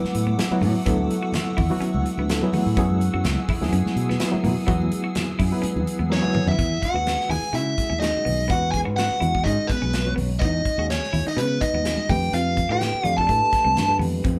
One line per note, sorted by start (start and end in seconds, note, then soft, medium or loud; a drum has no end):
0.00 0.32 F#3 medium
0.00 2.73 A3 medium
0.00 0.33 B3 medium
0.00 0.33 E4 medium
0.00 0.33 B4 loud
0.00 6.54 F#5 medium
0.00 0.84 D6 medium
0.00 6.55 E6 medium
0.00 muted fingered electric bass stroke soft
0.05 snare soft
0.05 high conga medium
0.15 0.35 A2 medium
0.15 closed hi-hat medium
0.27 0.40 B3 medium
0.27 high conga medium
0.38 0.49 F#3 medium
0.38 0.50 B3 medium
0.38 0.50 E4 medium
0.38 0.50 G#4 medium
0.38 snare loud
0.38 closed hi-hat medium
0.51 0.82 F#3 medium
0.51 0.83 B3 medium
0.51 0.83 E4 medium
0.51 0.83 F#4 medium
0.51 muted fingered electric bass stroke soft
0.51 high conga medium
0.61 0.73 A2 medium
0.61 0.75 A3 medium
0.61 open hi-hat medium
0.61 low conga medium
0.85 1.07 D2 medium
0.85 1.60 F#3 medium
0.85 1.61 B3 medium
0.85 0.99 B3 medium
0.85 1.60 E4 medium
0.85 1.61 A4 loud
0.85 2.74 C#6 medium
0.85 kick loud
0.85 closed hi-hat medium
0.98 high conga medium
1.11 closed hi-hat medium
1.23 1.36 F#4 medium
1.32 snare loud
1.32 closed hi-hat medium
1.32 low conga medium
1.57 1.69 E2 medium
1.57 1.70 E4 medium
1.57 kick medium
1.57 open hi-hat medium
1.57 low conga medium
1.70 2.23 F#3 medium
1.70 2.23 B3 medium
1.70 2.23 E4 medium
1.70 2.23 F#4 loud
1.80 1.94 C#4 medium
1.80 muted fingered electric bass stroke soft
1.80 closed hi-hat medium
1.94 2.04 D2 medium
1.94 high conga medium
2.06 closed hi-hat medium
2.18 2.39 D2 medium
2.18 2.32 B3 medium
2.18 high conga medium
2.29 2.41 F#3 medium
2.29 2.41 B3 medium
2.29 2.41 E4 medium
2.29 2.41 A4 medium
2.29 snare loud
2.29 closed hi-hat medium
2.41 2.74 F#3 medium
2.41 2.74 B3 medium
2.41 2.74 E4 medium
2.41 2.74 G#4 medium
2.41 high conga medium
2.53 2.67 A3 medium
2.53 open hi-hat medium
2.53 low conga medium
2.66 2.76 A2 loud
2.77 3.09 F#2 medium
2.77 3.52 F#3 medium
2.77 2.90 B3 medium
2.77 3.52 B3 medium
2.77 3.52 E4 medium
2.77 6.55 G#4 medium
2.77 3.52 G#4 loud
2.77 6.55 G#5 medium
2.77 kick loud
2.77 closed hi-hat medium
2.90 high conga medium
3.01 closed hi-hat medium
3.14 3.23 F#2 medium
3.14 3.27 F#4 medium
3.24 3.36 C#2 medium
3.24 snare loud
3.24 closed hi-hat medium
3.24 low conga medium
3.48 3.62 E4 medium
3.48 muted fingered electric bass stroke soft
3.48 kick medium
3.48 open hi-hat medium
3.48 low conga medium
3.61 3.71 E2 medium
3.61 4.14 F#3 medium
3.61 4.14 B3 medium
3.61 4.14 E4 medium
3.61 4.15 G#4 loud
3.61 snare soft
3.73 3.84 F#2 medium
3.73 3.86 C#4 medium
3.73 closed hi-hat medium
3.86 muted fingered electric bass stroke soft
3.86 snare soft
3.86 high conga medium
3.96 4.17 B2 medium
3.96 closed hi-hat medium
4.09 4.22 B3 medium
4.09 snare soft
4.09 high conga medium
4.19 4.30 F#3 medium
4.19 4.31 B3 medium
4.19 4.31 E4 medium
4.19 4.32 B4 medium
4.19 snare loud
4.19 closed hi-hat medium
4.31 4.63 F#3 medium
4.31 4.64 B3 medium
4.31 4.64 E4 medium
4.31 4.64 A#4 medium
4.31 muted fingered electric bass stroke soft
4.31 high conga medium
4.44 4.55 B2 medium
4.44 4.57 A#3 medium
4.44 open hi-hat medium
4.44 low conga medium
4.67 4.88 E2 medium
4.67 5.42 F#3 medium
4.67 4.80 B3 medium
4.67 5.42 B3 medium
4.67 5.42 E4 medium
4.67 5.43 F#4 loud
4.67 kick loud
4.67 closed hi-hat medium
4.82 high conga medium
4.92 closed hi-hat medium
5.04 5.17 F#4 medium
5.15 snare loud
5.15 closed hi-hat medium
5.15 low conga medium
5.39 5.51 F#2 medium
5.39 5.52 E4 medium
5.39 kick medium
5.39 open hi-hat medium
5.52 6.05 F#3 medium
5.52 6.05 B3 medium
5.52 6.05 E4 medium
5.52 6.05 B4 loud
5.62 5.75 C#4 medium
5.62 muted fingered electric bass stroke soft
5.62 closed hi-hat medium
5.62 high conga medium
5.76 5.85 E2 medium
5.76 high conga medium
5.87 closed hi-hat medium
5.99 6.20 E2 medium
5.99 6.13 B3 medium
5.99 high conga medium
6.10 6.21 F#3 medium
6.10 6.21 B3 medium
6.10 6.21 E4 medium
6.10 6.22 A#4 medium
6.10 6.46 C#5 medium
6.10 snare medium
6.15 6.47 C#4 medium
6.22 6.54 F#3 medium
6.22 6.54 B3 medium
6.22 6.54 E4 medium
6.22 6.55 B4 medium
6.22 high tom medium
6.22 high conga medium
6.35 6.48 A#3 medium
6.35 mid tom medium
6.35 low conga medium
6.46 6.57 F#2 medium
6.46 6.84 E5 medium
6.46 floor tom medium
6.46 low conga medium
6.51 6.82 E4 medium
6.59 6.79 E2 medium
6.59 6.72 B3 medium
6.59 kick medium
6.59 closed hi-hat medium
6.82 7.28 F#4 medium
6.82 7.31 F#5 medium
6.82 muted fingered electric bass stroke soft
6.82 kick medium
6.82 closed hi-hat medium
6.94 7.16 D#2 medium
6.94 7.48 G#3 medium
6.94 7.48 C#4 medium
6.94 7.48 F#4 medium
6.94 7.09 F#4 medium
6.94 7.48 B4 medium
7.07 snare medium
7.07 closed hi-hat medium
7.21 snare soft
7.29 7.41 D#2 medium
7.29 7.43 E4 medium
7.29 7.53 G#4 medium
7.29 7.53 G#5 medium
7.29 open hi-hat medium
7.29 low conga medium
7.42 muted fingered electric bass stroke soft
7.53 7.74 C#3 medium
7.53 7.97 G#3 medium
7.53 7.97 C#4 medium
7.53 7.66 D#4 medium
7.53 7.98 E4 medium
7.53 7.97 F#4 medium
7.53 7.97 G#4 medium
7.53 7.99 E5 medium
7.53 closed hi-hat medium
7.78 muted fingered electric bass stroke soft
7.78 kick medium
7.78 closed hi-hat medium
7.90 8.12 D#2 medium
7.90 8.03 C#4 medium
7.90 high conga medium
8.00 8.44 G#3 medium
8.00 8.45 C#4 medium
8.00 8.46 D#4 medium
8.00 8.45 F#4 medium
8.00 8.45 G#4 medium
8.00 8.50 D#5 medium
8.00 snare loud
8.00 closed hi-hat medium
8.00 high conga soft
8.17 high conga medium
8.25 8.47 B1 medium
8.25 8.39 B3 medium
8.25 open hi-hat medium
8.25 high conga medium
8.25 low conga medium
8.48 8.82 E2 medium
8.48 8.82 G#3 medium
8.48 8.62 B3 medium
8.48 8.82 C#4 medium
8.48 8.82 F#4 medium
8.48 8.82 B4 medium
8.48 8.71 F#5 medium
8.48 kick loud
8.48 closed hi-hat medium
8.52 8.73 F#4 medium
8.71 8.78 G#5 medium
8.71 kick medium
8.71 closed hi-hat medium
8.77 8.83 G#4 medium
8.84 9.08 G#2 medium
8.84 9.17 G#3 medium
8.84 9.17 C#4 medium
8.84 9.17 F#4 medium
8.84 8.99 F#4 medium
8.84 9.17 B4 medium
8.96 9.43 F#4 medium
8.96 9.46 F#5 medium
8.96 snare medium
8.96 closed hi-hat medium
9.11 muted fingered electric bass stroke soft
9.20 9.42 E2 medium
9.20 9.42 G#3 medium
9.20 9.42 C#4 medium
9.20 9.34 E4 medium
9.20 9.43 F#4 medium
9.20 9.43 G#4 medium
9.20 closed hi-hat medium
9.20 low conga medium
9.35 kick medium
9.43 9.57 G#2 medium
9.43 9.98 G#3 medium
9.43 9.99 C#4 medium
9.43 9.57 D#4 medium
9.43 9.69 D#4 medium
9.43 9.99 F#4 medium
9.43 9.99 G#4 medium
9.43 9.69 D#5 medium
9.43 kick medium
9.43 closed hi-hat medium
9.67 10.13 B4 medium
9.67 muted fingered electric bass stroke soft
9.67 kick medium
9.67 closed hi-hat medium
9.72 10.16 B3 medium
9.82 10.13 B1 medium
9.82 9.95 C#4 medium
9.82 high conga medium
9.93 snare loud
9.93 closed hi-hat medium
9.93 high conga medium
10.05 10.69 G#3 medium
10.05 10.69 C#4 medium
10.05 10.69 F#4 medium
10.05 10.70 C#5 medium
10.05 high conga medium
10.16 10.38 B1 medium
10.16 10.29 B3 medium
10.16 open hi-hat medium
10.16 high conga medium
10.16 low conga medium
10.39 10.62 E2 medium
10.39 10.54 B3 medium
10.39 10.85 D#5 medium
10.39 kick loud
10.39 closed hi-hat medium
10.45 10.88 D#4 medium
10.65 kick medium
10.65 closed hi-hat medium
10.78 10.99 D#2 medium
10.78 11.31 G#3 medium
10.78 11.31 C#4 medium
10.78 10.92 F#4 medium
10.78 11.32 F#4 medium
10.78 11.32 G#4 medium
10.90 11.25 C#4 medium
10.90 11.24 C#5 medium
10.90 snare medium
10.90 closed hi-hat medium
11.04 snare soft
11.13 11.25 D#2 medium
11.13 11.26 E4 medium
11.13 open hi-hat medium
11.13 low conga medium
11.27 11.37 D#4 medium
11.27 11.38 D#5 medium
11.27 muted fingered electric bass stroke soft
11.36 11.58 C#3 medium
11.36 11.80 G#3 medium
11.36 11.60 B3 medium
11.36 11.80 C#4 medium
11.36 11.50 C#4 medium
11.36 11.80 F#4 medium
11.36 11.80 B4 medium
11.36 11.62 B4 medium
11.36 closed hi-hat medium
11.61 12.06 D#4 medium
11.61 12.10 D#5 medium
11.61 kick medium
11.61 closed hi-hat medium
11.74 11.95 D#2 medium
11.74 11.88 B3 medium
11.74 high conga medium
11.84 12.08 G#3 medium
11.84 12.09 C#4 medium
11.84 12.09 F#4 medium
11.84 12.09 G#4 medium
11.84 snare medium
11.84 closed hi-hat medium
11.84 high conga medium
11.98 high conga medium
12.09 12.30 F2 medium
12.09 12.22 A3 medium
12.09 12.63 A3 medium
12.09 12.63 D4 medium
12.09 12.32 G4 medium
12.09 12.64 G4 medium
12.09 12.64 B4 medium
12.09 12.34 G5 medium
12.09 kick medium
12.09 open hi-hat medium
12.09 high conga medium
12.09 low conga medium
12.33 12.65 F2 medium
12.33 12.47 C4 medium
12.33 12.69 F4 medium
12.33 12.71 F5 medium
12.33 closed hi-hat medium
12.57 kick medium
12.57 closed hi-hat medium
12.57 low conga medium
12.69 12.90 A2 medium
12.69 13.02 A3 medium
12.69 13.02 D4 medium
12.69 12.83 G4 medium
12.69 13.02 G4 medium
12.69 13.16 G4 medium
12.69 13.02 B4 medium
12.69 13.16 G5 medium
12.81 snare medium
12.81 closed hi-hat medium
12.94 muted fingered electric bass stroke soft
13.03 13.26 F2 medium
13.03 13.26 A3 medium
13.03 13.26 D4 medium
13.03 13.17 F4 medium
13.03 13.26 G4 medium
13.03 13.26 D5 medium
13.03 closed hi-hat medium
13.03 low conga medium
13.18 13.98 A4 medium
13.18 13.97 A5 medium
13.18 kick medium
13.27 13.40 A2 medium
13.27 13.83 A3 medium
13.27 13.41 D4 medium
13.27 13.83 D4 medium
13.27 13.83 G4 medium
13.27 13.83 B4 medium
13.27 kick medium
13.27 closed hi-hat medium
13.53 muted fingered electric bass stroke soft
13.53 kick medium
13.53 snare soft
13.53 closed hi-hat medium
13.64 13.75 C2 medium
13.64 13.78 C4 medium
13.64 high conga medium
13.76 13.98 G2 medium
13.76 snare medium
13.76 closed hi-hat medium
13.76 high conga medium
13.76 low conga medium
13.88 14.39 A3 medium
13.88 14.39 D4 medium
13.88 14.39 G4 medium
13.88 14.39 B4 medium
13.88 high conga medium
13.99 14.21 F2 medium
13.99 14.13 B3 medium
13.99 open hi-hat medium
13.99 high conga medium
13.99 low conga medium
14.24 14.39 F2 medium
14.24 14.37 C4 medium
14.24 kick loud
14.24 closed hi-hat medium